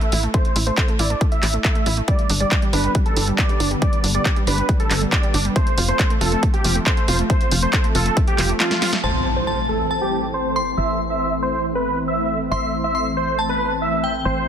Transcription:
Already playing: E5
0.01 A3, closed hi-hat
0.12 A1 E4, open hi-hat
0.23 A3, closed hi-hat
0.34 A3 C5, kick, closed hi-hat
0.45 closed hi-hat
0.56 A1 E4, open hi-hat
0.67 A3 C5, closed hi-hat
0.78 A4, kick, clap, closed hi-hat
0.88 A3, closed hi-hat
0.99 A1 E4 D5, open hi-hat
1.10 A3, closed hi-hat
1.21 A3, kick, closed hi-hat
1.32 E5, closed hi-hat
1.43 A1 E4, clap, open hi-hat
1.54 A3
1.64 A4 E5, kick, clap, closed hi-hat
1.75 A3, closed hi-hat
1.86 A1 E4, open hi-hat
1.97 A3, closed hi-hat
2.08 D3 G3 B3 D5, kick, closed hi-hat
2.19 closed hi-hat
2.30 G1 D4, open hi-hat
2.40 G3 D5, closed hi-hat
2.51 G4, kick, clap, closed hi-hat
2.62 G3, closed hi-hat
2.73 G1 D4 B4, open hi-hat
2.84 G3, closed hi-hat
2.95 G3, kick, closed hi-hat
3.06 A4, closed hi-hat
3.17 G1 D4, open hi-hat
3.27 G3, closed hi-hat
3.38 G4 D5, kick, clap, closed hi-hat
3.49 G3, closed hi-hat
3.60 G1 D4, open hi-hat
3.71 G3, closed hi-hat
3.82 G3 D5, kick, closed hi-hat
3.93 closed hi-hat
4.04 G1 D4, open hi-hat
4.14 G3 D5, closed hi-hat
4.25 G4, kick, clap, closed hi-hat
4.36 G3, closed hi-hat
4.47 G1 D4 B4, open hi-hat
4.58 G3, closed hi-hat
4.69 G3, kick, closed hi-hat
4.80 A4, closed hi-hat
4.91 G1 D4, clap, open hi-hat
5.02 G3, closed hi-hat
5.12 G4 D5, kick, clap, closed hi-hat
5.23 G3, closed hi-hat
5.34 G1 D4, open hi-hat
5.45 G3, closed hi-hat
5.56 F3 A3 C4 C5, kick, closed hi-hat
5.67 closed hi-hat
5.78 F1 F4, open hi-hat
5.88 A3 C5, closed hi-hat
5.99 A4, kick, clap, closed hi-hat
6.10 A3, closed hi-hat
6.21 F1 F4 A4, open hi-hat
6.32 A3, closed hi-hat
6.43 A3, kick, closed hi-hat
6.54 G4, closed hi-hat
6.64 F1 F4, open hi-hat
6.75 A3, closed hi-hat
6.86 A4 C5, kick, clap, closed hi-hat
6.97 A3, closed hi-hat
7.08 F1 F4, open hi-hat
7.19 A3, closed hi-hat
7.30 A3 C5, kick, closed hi-hat
7.41 closed hi-hat
7.51 F1 F4, open hi-hat
7.62 A3 C5, closed hi-hat
7.73 A4, kick, clap, closed hi-hat
7.84 A3, closed hi-hat
7.95 F1 F4 A4, open hi-hat
8.06 A3, closed hi-hat
8.17 A3, kick, closed hi-hat
8.28 G4, closed hi-hat
8.38 F1 F4, clap, open hi-hat
8.49 A3, closed hi-hat
8.60 F4 A4, snare, clap, closed hi-hat
8.71 A3, snare, closed hi-hat
8.82 F4, snare, open hi-hat
8.93 A3, snare
9.04 A1 E3 A3 C4 C5 A5, impact
9.36 C5
9.47 A5
9.69 A4
9.91 A5
10.01 G4
10.34 C5
10.56 C6
10.77 A1 E5
11.10 E5
11.43 C5
11.75 B4
12.08 E5
12.51 A1 E5 C6
12.84 E5
12.95 C6
13.17 C5
13.39 A5
13.49 B4
13.82 E5
14.04 G5
14.25 A1 C5

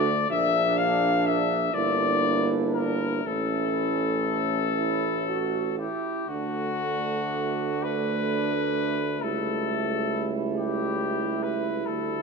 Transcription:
Already playing: D2 A3 D4 F#4 D5
0.30 A#1 A#3 D4 E5
0.78 F5
1.26 E5
1.73 G1 A#3 D4 E4 D5
2.74 A#4
3.24 A1 A3 C#4 E4 A4
4.77 E4
5.27 F#4
5.78 E4 G4
6.28 D2 A3 D4 F#4
7.83 B4
9.21 C#2 G3 E4 A4
10.56 G4
11.43 B4
11.86 D2 A3 A4

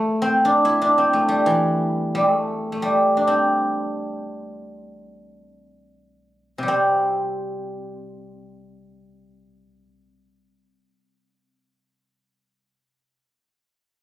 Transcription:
Already playing: A3
0.22 C4
0.45 D4
0.65 E4
0.82 D4
0.98 C4
1.13 A3
1.28 G3
1.46 E3
2.15 A3
2.72 A3
2.82 G3
3.17 D4
3.27 C4
6.58 C3
6.63 G3
6.68 C4

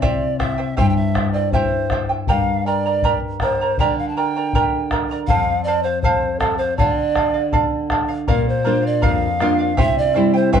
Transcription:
Already playing: C3
0.02 E4 G4 C5 D5 E5 G5, bombo low
0.39 E4 C5 E5 G5, bombo rim, bombo low
0.58 E4 C5 G5
0.77 G2 E4 G4 C5 E5 G5, bombo low
0.89 G5
0.96 E5
1.14 E4 C5 E5 G5, bombo rim, bombo low
1.33 E4 C5 D5 G5
1.52 E4 G4 C5 E5 G5, bombo low
1.90 E4 C5 E5 G5, bombo rim, bombo low
2.09 E4 C5 G5
2.27 G2 G4 A#4 D5 F5 G5 A#5, bombo low
2.66 A#4 D5 G5 A#5
2.86 A#4 D5 A#5
3.02 G4 A#4 D5 G5 A#5, bombo low
3.40 A#4 C5 D5 G5 A#5, bombo rim, bombo low
3.61 A#4 D5 A#5
3.78 D3 G4 A#4 D5 G5 A#5, bombo low
3.98 F5
4.09 A5
4.17 A#4 D5 G5 A#5
4.36 A#4 D5 A#5
4.53 G4 A#4 D5 G5 A#5, bombo low
4.91 A#4 D5 G5 A#5, bombo rim, bombo low
5.11 A#4 D5 A#5
5.27 F2 A4 C5 F5, bombo low
5.64 A4 C5 D5
5.68 F5
5.83 C5 F5
6.02 A4 C5 F5, bombo low
6.40 A4 C5 F5, bombo rim, bombo low
6.58 C5 F5
6.77 D3 A4 D5 F5, bombo low
7.15 A4 D5 F5, bombo rim, bombo low
7.34 D5 F5
7.53 A4 D5 F5, bombo low
7.90 A4 D5 F5, bombo rim, bombo low
8.09 D5 F5
8.28 A#2 A#4 D5 F5, bombo low
8.49 C5
8.65 A#3 D4 F4 A#4 D5 F5
8.83 D5 F5
9.02 F2 A#4 D5 F5, bombo low
9.40 A#3 D4 F4 A#4 D5 F5, bombo rim
9.59 D5 F5
9.77 C3 E4 G4 C5 E5 G5, bombo low
9.98 D5
10.14 G3 C4 E4 C5 E5 G5
10.34 E4 C5 G5
10.53 G2 E4 G4 C5 E5 G5, bombo low

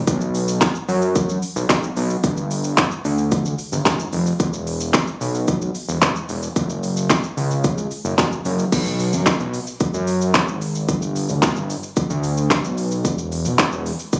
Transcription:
0.07 B1, kick, closed hi-hat, shaker
0.21 shaker
0.35 open hi-hat, shaker
0.48 shaker
0.61 kick, snare, clap, closed hi-hat, shaker
0.75 shaker
0.89 F#2, open hi-hat, shaker
1.02 shaker
1.15 kick, closed hi-hat, shaker
1.29 shaker
1.42 open hi-hat, shaker
1.56 B1, shaker
1.70 B1, kick, snare, clap, closed hi-hat, shaker
1.83 shaker
1.97 B1, open hi-hat, shaker
2.10 shaker
2.24 G1, kick, closed hi-hat, shaker
2.37 shaker
2.51 open hi-hat, shaker
2.64 shaker
2.78 kick, snare, clap, closed hi-hat, shaker
2.91 shaker
3.05 D2, open hi-hat, shaker
3.18 shaker
3.32 kick, closed hi-hat, shaker
3.45 shaker
3.59 open hi-hat, shaker
3.72 G1, shaker
3.86 G1, kick, snare, clap, closed hi-hat, shaker
4.00 shaker
4.13 F1, open hi-hat, shaker
4.26 shaker
4.40 E1, kick, closed hi-hat, shaker
4.53 shaker
4.67 open hi-hat, shaker
4.80 shaker
4.94 kick, snare, clap, closed hi-hat, shaker
5.07 shaker
5.21 B1, open hi-hat, shaker
5.34 shaker
5.48 kick, closed hi-hat, shaker
5.62 shaker
5.75 open hi-hat, shaker
5.89 E1, shaker
6.02 E1, kick, snare, clap, closed hi-hat, shaker
6.16 shaker
6.29 E1, open hi-hat, shaker
6.43 shaker
6.56 F#1, kick, closed hi-hat, shaker
6.70 shaker
6.83 open hi-hat, shaker
6.97 shaker
7.10 kick, snare, clap, closed hi-hat, shaker
7.24 shaker
7.37 C#2, open hi-hat, shaker
7.51 shaker
7.64 kick, closed hi-hat, shaker
7.78 shaker
7.91 open hi-hat, shaker
8.05 F#1, shaker
8.18 F#1, kick, snare, clap, closed hi-hat, shaker
8.32 shaker
8.45 F#1, open hi-hat, shaker
8.59 shaker
8.72 B1, kick, closed hi-hat, crash, shaker
8.86 shaker
9.00 open hi-hat, shaker
9.13 F#2, shaker
9.26 kick, snare, clap, closed hi-hat, shaker
9.40 B1, shaker
9.54 open hi-hat, shaker
9.67 shaker
9.80 kick, closed hi-hat, shaker
9.94 F#2, shaker
10.07 open hi-hat, shaker
10.21 shaker
10.34 kick, snare, clap, closed hi-hat, shaker
10.48 G#1, shaker
10.61 open hi-hat, shaker
10.75 shaker
10.89 G1, kick, closed hi-hat, shaker
11.02 shaker
11.16 open hi-hat, shaker
11.29 D2, shaker
11.43 kick, snare, clap, closed hi-hat, shaker
11.56 G1, shaker
11.70 open hi-hat, shaker
11.83 shaker
11.96 kick, closed hi-hat, shaker
12.10 D2, shaker
12.23 open hi-hat, shaker
12.37 shaker
12.51 kick, snare, clap, closed hi-hat, shaker
12.64 B1, shaker
12.78 open hi-hat, shaker
12.91 shaker
13.05 E1, kick, closed hi-hat, shaker
13.18 shaker
13.32 open hi-hat, shaker
13.45 B1, shaker
13.59 kick, snare, clap, closed hi-hat, shaker
13.72 E1, shaker
13.86 open hi-hat, shaker
13.99 shaker
14.13 kick, closed hi-hat, shaker

